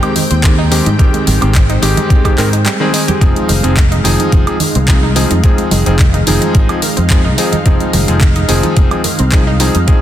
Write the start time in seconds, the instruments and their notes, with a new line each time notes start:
Already playing: analog synth pad G#3 C4 G5
0.02 electric grand piano D#3 G#3 C4 G4, synth arpeggio sound G#3, closed hi-hat, high woodblock
0.16 synth arpeggio sound D#3, open hi-hat, low conga
0.31 fingered electric bass D#2, synth arpeggio sound C4, closed hi-hat
0.43 electric grand piano D#3 G#3 C4 G4, synth arpeggio sound D#3, kick, clap, closed hi-hat
0.58 synth arpeggio sound D#4
0.71 electric grand piano D#3 G#3 C4 G4, synth arpeggio sound D#3, open hi-hat
0.86 fingered electric bass G#2, synth arpeggio sound D#4, closed hi-hat, high conga
0.99 electric grand piano D#3 G#3 C4 G4, synth arpeggio sound D#3, kick, closed hi-hat
1.14 synth arpeggio sound G#3, closed hi-hat
1.27 fingered electric bass G#1, synth arpeggio sound D#3, open hi-hat, high conga
1.41 fingered electric bass G#1, electric grand piano D#3 G#3 C4 G4, synth arpeggio sound C4, closed hi-hat, high woodblock
1.55 synth arpeggio sound D#3, kick, clap, closed hi-hat
1.70 synth arpeggio sound D#4, closed hi-hat
1.82 fingered electric bass G#1, electric grand piano D#3 G#3 C4 G4, synth arpeggio sound D#3, open hi-hat
1.97 synth arpeggio sound D#4, closed hi-hat, high conga, low conga
2.10 synth arpeggio sound D#3, kick, closed hi-hat
2.24 electric grand piano D#3 G#3 C4 G4, synth arpeggio sound G#3, kick, closed hi-hat, high woodblock
2.37 fingered electric bass G#2, electric grand piano D#3 G#3 C4 A#4, synth arpeggio sound C4, clap, open hi-hat
2.53 synth arpeggio sound D#4, closed hi-hat
2.65 synth arpeggio sound G3, clap, closed hi-hat
2.80 electric grand piano D#3 G#3 C4 G#4, synth arpeggio sound G3
2.93 electric grand piano D#3 G#3 C4 G#4, synth arpeggio sound D#4, open hi-hat
3.08 synth arpeggio sound G4, closed hi-hat, high conga, low conga
3.21 fingered electric bass F1, synth arpeggio sound D#3, electric grand piano F3 C4 D#4 G#4, analog synth pad D#4 F5, kick, closed hi-hat
3.36 synth arpeggio sound G#3, closed hi-hat
3.49 fingered electric bass F1, synth arpeggio sound D#3, open hi-hat, high conga
3.63 fingered electric bass F1, electric grand piano F3 C4 D#4 G#4, synth arpeggio sound C4, closed hi-hat
3.77 synth arpeggio sound D#3, kick, clap, closed hi-hat
3.92 synth arpeggio sound D#4, closed hi-hat
4.04 fingered electric bass F1, synth arpeggio sound D#3, electric grand piano F3 C4 D#4 G#4, open hi-hat
4.18 synth arpeggio sound D#4, closed hi-hat, high conga, low conga
4.32 fingered electric bass F1, synth arpeggio sound D#3, kick, closed hi-hat
4.47 electric grand piano F3 C4 D#4 G#4, synth arpeggio sound G#3, closed hi-hat, high woodblock
4.60 synth arpeggio sound D#3, open hi-hat, low conga
4.75 fingered electric bass C2, synth arpeggio sound C4, closed hi-hat
4.88 synth arpeggio sound D#3, electric grand piano F3 C4 D#4 G#4, kick, clap, closed hi-hat
5.03 synth arpeggio sound D#4
5.15 synth arpeggio sound D#3, electric grand piano F3 C4 D#4 G#4, open hi-hat
5.31 fingered electric bass F2, synth arpeggio sound D#4, closed hi-hat, high conga
5.44 synth arpeggio sound D#3, electric grand piano F3 C4 D#4 G#4, kick, closed hi-hat
5.58 synth arpeggio sound G#3, closed hi-hat
5.71 fingered electric bass F1, synth arpeggio sound D#3, open hi-hat, high conga
5.86 fingered electric bass F1, electric grand piano F3 C4 D#4 G#4, synth arpeggio sound C4, closed hi-hat
5.99 synth arpeggio sound D#3, kick, clap, closed hi-hat
6.14 synth arpeggio sound D#4, closed hi-hat
6.26 fingered electric bass F1, synth arpeggio sound D#3, electric grand piano F3 C4 D#4 G#4, open hi-hat
6.41 synth arpeggio sound D#4, closed hi-hat, high conga, low conga
6.55 fingered electric bass G#1, synth arpeggio sound D#3, kick, closed hi-hat
6.69 electric grand piano F3 C4 D#4 G#4, synth arpeggio sound G#3, closed hi-hat, high woodblock
6.82 synth arpeggio sound D#3, open hi-hat
6.97 fingered electric bass F2, synth arpeggio sound C4, closed hi-hat
7.10 synth arpeggio sound D#3, electric grand piano F3 C4 D#4 G#4, kick, clap, closed hi-hat
7.24 fingered electric bass C2, synth arpeggio sound D#4
7.38 synth arpeggio sound D#3, electric grand piano F3 C4 D#4 G#4, open hi-hat
7.52 synth arpeggio sound D#4, closed hi-hat, high conga, low conga
7.66 fingered electric bass F1, synth arpeggio sound D#3, electric grand piano F3 C4 D#4 G#4, kick, closed hi-hat
7.80 synth arpeggio sound G#3, closed hi-hat
7.93 fingered electric bass F1, synth arpeggio sound D#3, open hi-hat, high conga
8.08 fingered electric bass F1, electric grand piano F3 C4 D#4 G#4, synth arpeggio sound C4, closed hi-hat
8.21 synth arpeggio sound D#3, kick, clap, closed hi-hat
8.36 synth arpeggio sound D#4, closed hi-hat
8.48 fingered electric bass F1, synth arpeggio sound D#3, electric grand piano F3 C4 D#4 G#4, open hi-hat
8.63 synth arpeggio sound D#4, closed hi-hat, high conga, low conga
8.76 fingered electric bass F1, synth arpeggio sound D#3, kick, closed hi-hat
8.91 electric grand piano F3 C4 D#4 G#4, synth arpeggio sound G#3, closed hi-hat, high woodblock
9.04 synth arpeggio sound D#3, open hi-hat, low conga
9.19 fingered electric bass C2, synth arpeggio sound C4, closed hi-hat
9.32 synth arpeggio sound D#3, electric grand piano F3 C4 D#4 G#4, kick, clap, closed hi-hat
9.47 synth arpeggio sound D#4
9.60 synth arpeggio sound D#3, electric grand piano F3 C4 D#4 G#4, open hi-hat
9.75 fingered electric bass F2, synth arpeggio sound D#4, closed hi-hat, high conga
9.87 synth arpeggio sound D#3, electric grand piano F3 C4 D#4 G#4, kick, closed hi-hat